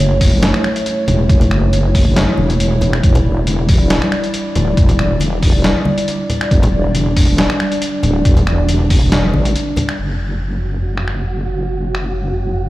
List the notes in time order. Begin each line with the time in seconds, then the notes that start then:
Already playing: F#1 A3 E4 C#5
0.21 kick, open hi-hat
0.32 F#1
0.43 snare, closed hi-hat
0.54 finger snap
0.64 finger snap
0.76 closed hi-hat
0.86 closed hi-hat
1.08 E1, closed hi-hat, low conga
1.29 F#1, kick, closed hi-hat
1.41 closed hi-hat, low conga
1.51 finger snap
1.73 closed hi-hat, high conga
1.95 kick, open hi-hat
2.06 F#1
2.16 snare, closed hi-hat
2.38 E1, high conga
2.50 closed hi-hat
2.60 closed hi-hat
2.81 closed hi-hat, low conga
2.93 finger snap
3.03 E1 G3 D5, kick, closed hi-hat
3.15 closed hi-hat, low conga
3.47 closed hi-hat, high conga
3.69 kick, open hi-hat
3.80 E1
3.90 snare, closed hi-hat
4.02 finger snap
4.12 finger snap
4.24 closed hi-hat
4.34 closed hi-hat
4.55 D1, closed hi-hat, low conga
4.77 E1, kick, closed hi-hat
4.89 closed hi-hat, low conga
4.99 finger snap
5.20 closed hi-hat, high conga
5.43 kick, open hi-hat
5.54 E1
5.64 snare, closed hi-hat
5.85 high conga
5.98 closed hi-hat
6.08 closed hi-hat
6.30 closed hi-hat, low conga
6.41 finger snap
6.51 E1 D4, kick, closed hi-hat
6.63 closed hi-hat, low conga
6.95 closed hi-hat, high conga
7.16 kick, open hi-hat
7.28 E1
7.38 snare, closed hi-hat
7.50 finger snap
7.60 finger snap
7.72 closed hi-hat
7.82 closed hi-hat
8.03 D1, closed hi-hat, low conga
8.25 E1, kick, closed hi-hat
8.37 closed hi-hat, low conga
8.47 finger snap
8.69 closed hi-hat, high conga
8.90 kick, open hi-hat
9.02 E1
9.12 snare, closed hi-hat
9.34 A1, high conga
9.45 closed hi-hat
9.56 closed hi-hat
9.76 closed hi-hat, high conga, low conga
9.89 finger snap
9.99 F#1 A3 F#4 C#5
10.97 finger snap
11.08 finger snap
11.95 finger snap